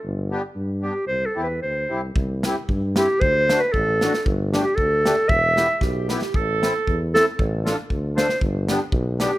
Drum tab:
HH |--------|--------|--p---p-|--p---p-|
SD |--------|--------|--o---o-|--o---oo|
BD |--------|--------|o---o---|o---o---|

HH |--p---p-|--p---p-|--p---p-|--p---p-|
SD |--o---o-|--o-o-oo|--o---o-|--o---oo|
BD |o---o---|o---o---|o---o---|o---o---|

HH |--p---p-|
SD |--o---o-|
BD |o---o---|